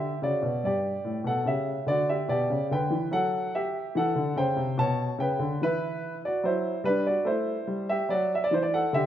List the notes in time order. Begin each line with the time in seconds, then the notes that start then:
Already playing: D3 G4 E5
0.22 C#3 F#4 D5
0.42 B2
0.64 G2 G4 D5
1.04 A2
1.24 B2 A4 F#5
1.46 C#3 G4 E5
1.86 D3 F#4 D5
2.09 G4 E5
2.28 B2 G4 D5
2.50 C#3
2.71 D3 B4 G5
2.90 E3
3.11 F#3 A4 F#5
3.55 G4 E5
3.95 E3 A4 F#5
4.15 D3
4.36 C#3 C5 G5
4.56 C3
4.78 B2 C#5 A5
5.19 C#3 B4 G5
5.39 D3
5.61 E3 E4 B4
6.25 F#4 D5
6.43 F#3 E4 C5
6.84 G3 D4 B4
7.07 F#4 D5
7.25 A3 E4 C5
7.67 G3
7.89 G4 E5
8.09 F#3 F#4 D5
8.35 E5
8.44 D5
8.51 E3 C5
8.63 D5
8.74 A4 F#5
8.93 D3 G4 E5